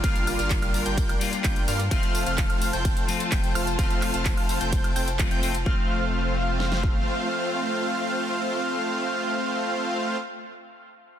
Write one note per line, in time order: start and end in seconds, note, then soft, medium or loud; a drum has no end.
0.00 0.37 G1 loud
0.00 1.18 G3 medium
0.00 0.36 G3 medium
0.00 1.18 A#3 medium
0.00 0.36 D4 medium
0.00 1.88 F4 medium
0.00 0.36 F4 medium
0.00 1.88 A#4 medium
0.00 0.36 A#4 medium
0.00 1.87 D5 medium
0.00 0.36 F5 loud
0.00 1.87 G5 loud
0.00 0.36 F6 loud
0.00 kick loud
0.00 closed hi-hat medium
0.00 ride medium
0.00 tambourine soft
0.04 1.19 D4 medium
0.04 1.19 F4 medium
0.16 closed hi-hat soft
0.16 tambourine soft
0.27 open hi-hat loud
0.27 tambourine medium
0.27 high woodblock medium
0.39 0.83 G1 loud
0.39 0.83 G3 medium
0.39 0.83 D4 medium
0.39 0.83 F4 medium
0.39 0.83 A#4 medium
0.39 0.83 F5 loud
0.39 0.83 F6 medium
0.39 closed hi-hat soft
0.39 tambourine soft
0.50 kick loud
0.50 clap loud
0.50 closed hi-hat medium
0.50 ride medium
0.50 tambourine soft
0.62 closed hi-hat soft
0.62 tambourine soft
0.62 high woodblock medium
0.74 open hi-hat loud
0.74 tambourine medium
0.86 1.16 G1 medium
0.86 1.18 G3 medium
0.86 1.18 D4 medium
0.86 1.18 F4 medium
0.86 1.18 A#4 medium
0.86 1.18 G5 medium
0.86 1.18 G6 medium
0.86 closed hi-hat soft
0.86 tambourine soft
0.97 kick loud
0.97 closed hi-hat medium
0.97 ride medium
0.97 tambourine soft
1.09 closed hi-hat soft
1.09 tambourine soft
1.09 high woodblock medium
1.20 1.88 G3 medium
1.20 1.88 A#3 medium
1.20 1.89 D4 medium
1.20 1.89 F4 loud
1.20 open hi-hat loud
1.20 tambourine medium
1.33 closed hi-hat soft
1.33 tambourine soft
1.44 1.65 G1 medium
1.44 1.65 G3 medium
1.44 1.65 D4 medium
1.44 1.65 F4 medium
1.44 1.65 A#4 medium
1.44 1.65 G5 medium
1.44 1.65 G6 medium
1.44 kick loud
1.44 clap loud
1.44 closed hi-hat medium
1.44 ride medium
1.44 tambourine soft
1.56 closed hi-hat soft
1.56 tambourine soft
1.68 1.89 G2 loud
1.68 1.80 G3 medium
1.68 1.80 D4 medium
1.68 1.80 F4 medium
1.68 1.80 A#4 medium
1.68 1.80 F5 loud
1.68 1.80 F6 medium
1.68 open hi-hat loud
1.68 tambourine medium
1.80 closed hi-hat soft
1.80 tambourine soft
1.90 2.24 F1 loud
1.90 3.06 F3 medium
1.90 3.06 A3 medium
1.90 2.24 A3 loud
1.90 2.24 C4 medium
1.90 3.06 C4 medium
1.90 2.24 F4 medium
1.90 5.63 F4 medium
1.90 3.07 F4 loud
1.90 5.63 A4 medium
1.90 2.24 C5 medium
1.90 5.63 C5 medium
1.90 2.24 F5 loud
1.90 5.63 A5 loud
1.90 2.24 F6 loud
1.90 kick loud
1.90 closed hi-hat loud
1.90 ride medium
1.90 tambourine soft
2.03 closed hi-hat soft
2.03 tambourine soft
2.15 open hi-hat loud
2.15 tambourine medium
2.26 2.71 F1 loud
2.26 2.70 A3 medium
2.26 2.70 C4 medium
2.26 2.70 F4 medium
2.26 2.70 C5 medium
2.26 2.70 F5 loud
2.26 2.70 F6 medium
2.26 closed hi-hat soft
2.26 tambourine soft
2.38 kick loud
2.38 clap loud
2.38 closed hi-hat loud
2.38 ride medium
2.38 tambourine soft
2.50 closed hi-hat soft
2.50 tambourine soft
2.50 high woodblock medium
2.62 open hi-hat loud
2.62 tambourine medium
2.73 3.03 F1 loud
2.73 3.06 A3 medium
2.73 3.06 C4 medium
2.73 3.06 F4 medium
2.73 3.06 C5 medium
2.73 3.06 G5 medium
2.73 3.06 G6 medium
2.73 closed hi-hat soft
2.73 tambourine soft
2.85 kick loud
2.85 closed hi-hat loud
2.85 ride medium
2.85 tambourine soft
2.97 closed hi-hat soft
2.97 tambourine soft
3.07 3.75 F3 medium
3.07 3.76 A3 medium
3.07 3.76 C4 medium
3.07 3.77 F4 loud
3.07 open hi-hat loud
3.07 tambourine medium
3.20 closed hi-hat soft
3.20 tambourine soft
3.32 3.53 F1 loud
3.32 3.52 A3 medium
3.32 3.53 C4 medium
3.32 3.52 F4 medium
3.32 3.53 C5 medium
3.32 3.53 G5 medium
3.32 3.53 G6 medium
3.32 kick loud
3.32 clap loud
3.32 closed hi-hat loud
3.32 ride medium
3.32 tambourine medium
3.44 closed hi-hat soft
3.44 tambourine soft
3.55 3.76 F1 loud
3.55 3.68 A3 medium
3.55 3.68 C4 medium
3.55 3.68 F4 medium
3.55 3.68 C5 medium
3.55 3.68 F5 loud
3.55 3.68 F6 loud
3.55 open hi-hat loud
3.55 tambourine medium
3.55 high woodblock medium
3.67 closed hi-hat soft
3.67 tambourine soft
3.78 4.12 F1 loud
3.78 4.93 F3 medium
3.78 4.93 A3 medium
3.78 4.11 A3 loud
3.78 4.11 C4 medium
3.78 4.94 C4 medium
3.78 4.11 F4 medium
3.78 4.94 F4 medium
3.78 4.11 C5 medium
3.78 4.11 F5 loud
3.78 4.11 F6 loud
3.78 kick loud
3.78 closed hi-hat medium
3.78 ride medium
3.78 tambourine soft
3.91 closed hi-hat soft
3.91 tambourine soft
4.02 clap medium
4.02 open hi-hat loud
4.02 tambourine medium
4.02 high woodblock medium
4.14 4.58 F1 loud
4.14 4.58 A3 medium
4.14 4.58 C4 medium
4.14 4.58 F4 medium
4.14 4.58 C5 medium
4.14 4.58 F5 medium
4.14 4.58 F6 medium
4.14 closed hi-hat soft
4.14 tambourine soft
4.25 kick loud
4.25 clap loud
4.25 closed hi-hat loud
4.25 ride medium
4.25 tambourine soft
4.37 open hi-hat medium
4.37 tambourine soft
4.37 high woodblock medium
4.49 open hi-hat loud
4.49 tambourine medium
4.61 4.94 F1 loud
4.61 4.93 A3 medium
4.61 4.93 C4 medium
4.61 4.93 F4 medium
4.61 4.93 C5 medium
4.61 4.93 G5 medium
4.61 4.93 G6 medium
4.61 closed hi-hat soft
4.61 tambourine soft
4.73 kick loud
4.73 closed hi-hat loud
4.73 ride medium
4.73 tambourine soft
4.84 closed hi-hat soft
4.84 tambourine soft
4.84 high woodblock medium
4.96 5.29 F1 medium
4.96 5.08 A3 medium
4.96 5.08 C4 medium
4.96 5.08 F4 medium
4.96 5.08 C5 medium
4.96 5.08 G5 medium
4.96 5.08 G6 medium
4.96 open hi-hat loud
4.96 tambourine medium
5.08 closed hi-hat soft
5.08 tambourine soft
5.19 5.40 F3 medium
5.19 5.40 A3 medium
5.19 5.40 C4 medium
5.19 5.40 F4 medium
5.19 kick loud
5.19 clap loud
5.19 closed hi-hat loud
5.19 ride medium
5.19 tambourine soft
5.31 5.64 F1 loud
5.31 5.51 A3 medium
5.31 5.51 C4 medium
5.31 5.51 F4 medium
5.31 5.51 C5 medium
5.31 5.51 G5 loud
5.31 5.51 G6 loud
5.31 closed hi-hat soft
5.31 tambourine soft
5.42 5.55 F3 medium
5.42 5.55 A3 medium
5.42 5.56 C4 medium
5.42 5.56 F4 medium
5.42 open hi-hat loud
5.42 tambourine medium
5.55 closed hi-hat soft
5.55 tambourine soft
5.65 7.03 F1 loud
5.65 10.17 F3 medium
5.65 10.18 A3 medium
5.65 10.17 A3 medium
5.65 10.17 C4 medium
5.65 10.19 C4 medium
5.65 10.17 F4 medium
5.65 10.20 F4 medium
5.65 10.17 C5 medium
5.65 10.17 F5 medium
5.65 10.17 F6 loud
5.65 kick loud
6.60 snare medium
6.72 snare medium
6.83 kick medium